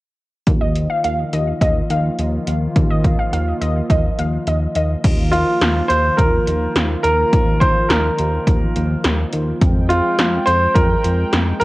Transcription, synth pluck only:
0.61 0.71 D#5 medium
0.90 1.00 F5 medium
1.04 1.24 F5 medium
1.33 1.43 D#5 medium
1.61 1.81 D#5 medium
1.90 2.00 F5 medium
2.90 3.00 D#5 medium
3.19 3.28 F5 medium
3.33 3.52 F5 medium
3.61 3.71 D#5 medium
3.90 4.09 D#5 medium
4.19 4.29 F5 medium
4.48 4.57 D#5 medium
4.76 4.86 D#5 medium

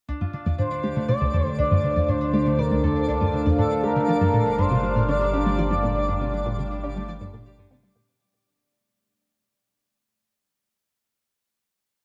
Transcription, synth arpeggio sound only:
0.08 0.15 D2 medium
0.21 0.25 G2 medium
0.34 0.43 D3 medium
0.46 0.50 F2 loud
0.59 0.65 A2 medium
0.84 0.90 A3 medium
0.96 1.00 D3 medium
1.09 1.12 C3 medium
1.21 1.25 D2 loud
1.34 1.43 F2 medium
1.59 1.65 D2 medium
1.71 1.75 G2 loud
1.84 1.93 D3 medium
1.96 2.00 F2 medium
2.08 2.15 A2 medium
2.33 2.40 A3 loud
2.46 2.50 D3 medium
2.58 2.62 C3 medium
2.71 2.75 D2 loud
2.83 2.93 F2 medium
3.08 3.15 D2 medium
3.21 3.25 G2 medium
3.34 3.43 D3 medium
3.46 3.50 F2 loud
3.58 3.65 A2 medium
3.83 3.90 A3 loud
3.96 4.00 D3 medium
4.08 4.12 F3 medium
4.21 4.25 G2 medium
4.33 4.43 A#2 loud
4.58 4.65 G2 medium
4.71 4.75 C3 loud
4.83 4.93 G3 medium
4.96 5.00 A#2 medium
5.08 5.15 D3 medium
5.33 5.40 D4 loud
5.46 5.50 G3 medium
5.58 5.62 F3 medium
5.71 5.75 G2 medium
5.83 5.93 A#2 loud
6.09 6.15 G2 medium
6.21 6.25 C3 medium
6.33 6.43 G3 medium
6.46 6.50 A#2 loud
6.59 6.65 D3 medium
6.84 6.90 D4 loud
6.96 7.00 G3 medium
7.08 7.12 F3 medium
7.21 7.25 G2 loud
7.33 7.43 A#2 loud
7.58 7.65 G2 medium
7.71 7.75 C3 medium
7.83 7.93 G3 medium
7.96 8.00 A#2 medium

